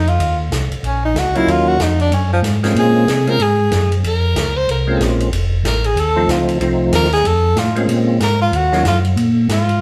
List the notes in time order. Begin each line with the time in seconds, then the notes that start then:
Already playing: F2
0.07 F4, ride
0.19 D#2, ride
0.51 C2, snare, hi-hat pedal, ride
0.70 C2, ride
0.83 A#1 C#4, ride
1.05 D#4
1.15 C#2, snare, hi-hat pedal, ride
1.19 F#4
1.35 F#3 A#3 C#4 D#4 E4 F4, ride
1.47 D#2 F4, ride
1.68 F#4
1.80 F2 D#4, snare, hi-hat pedal, ride
2.00 D4, ride
2.11 F#2 C#4, ride
2.33 F3
2.42 G#2, snare, hi-hat pedal, ride
2.63 G#3 A#3 C4 C#4 F4, snare, ride
2.75 A#2 G#4, ride
3.07 C3, snare, hi-hat pedal, ride
3.27 G#3 A#3 C4 C#4 F4 A#4, ride
3.39 G#2 G#4, ride
3.71 F#2, snare, hi-hat pedal, ride
3.92 ride
4.04 F2 A#4, ride
4.35 C#2, snare, hi-hat pedal, ride
4.57 C5
4.68 C2 A#4, ride
4.87 G#3 A#3 C4 C#4 F4
5.00 A#1, snare, hi-hat pedal, ride
5.20 ride
5.32 F1, ride
5.64 A1 A#4, snare, hi-hat pedal, ride
5.84 G#4, ride
5.96 D#2, ride
6.00 A4
6.16 F3 A3 C4 D#4 F4
6.27 C#2 F4, snare, hi-hat pedal, ride
6.49 ride
6.60 C2 F3 A3 C4 D#4 F4, ride
6.92 D#2 A#4, snare, hi-hat pedal, ride
7.04 snare
7.12 G#4, snare, ride
7.24 F2 A4, ride
7.56 A2 F4, snare, hi-hat pedal, ride
7.75 G#3 A#3 C4 C#4 F4, ride
7.88 A#2, ride
8.20 G#2 A#4, snare, hi-hat pedal, ride
8.41 F4
8.53 D#2 F#4, ride
8.72 F#3 A#3 C#4 D#4 F4, snare
8.85 F#2 F4, snare, hi-hat pedal, ride
9.05 ride
9.16 A#2, ride
9.48 G#2, snare, hi-hat pedal, ride
9.52 F4
9.69 ride